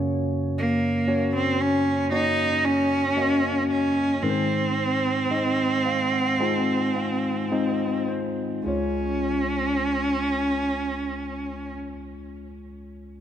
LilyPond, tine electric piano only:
<<
  \new Staff \with { instrumentName = "Tine electric piano" } { \time 4/4 \key des \major \tempo 4 = 54 << { r1 | r4. f''16 ges''16 aes''8 f''8 ees''8 c''8 | r1 | } \\ { <bes des' ges' des''>4 <bes des' ges' des''>4 <bes des' ges' des''>4 <bes des' ges' ees''>4 | <aes c' ees' bes' c''>4 <aes c' ees' ees''>4 <aes c' ees' f'>4 <aes c' ees' c''>4 | <aes des' f' des''>1 | } >> }
  \new Staff \with { instrumentName = "Tine electric piano" } { \clef bass \time 4/4 \key des \major <ges, des>2.~ <ges, des>8 r8 | <aes, ees>1 | des,1 | }
>>